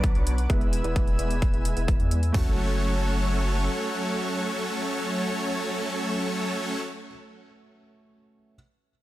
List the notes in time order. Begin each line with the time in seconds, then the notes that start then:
Already playing: B1 B2 F#3 B3 D4 B4 D5 F#5 D6
0.04 kick, closed hi-hat
0.15 B1 F#3 B3 D4 B4 C#5, closed hi-hat
0.27 closed hi-hat
0.38 closed hi-hat
0.49 E1 G#3 B3 E4 B4 E5 G#5 E6, kick, closed hi-hat
0.61 closed hi-hat
0.73 closed hi-hat
0.83 E1 G#3 B3 E4 B4 D5, closed hi-hat
0.96 kick, closed hi-hat
1.07 closed hi-hat
1.19 E1 G#3 B3 E4 B4 D5, closed hi-hat
1.31 closed hi-hat
1.42 kick, closed hi-hat
1.54 E1 G#3 B3 E4 B4 G#5, closed hi-hat
1.65 closed hi-hat
1.77 E1 G#3 B3 E4 B4 E5, closed hi-hat
1.88 kick, closed hi-hat
2.00 E2 G#3 B3 E4 B4 D5, closed hi-hat
2.11 closed hi-hat
2.23 closed hi-hat
2.33 F#1 F#3 A3 C#4 F#4 A4 C#5 F#5, kick, floor tom, open hi-hat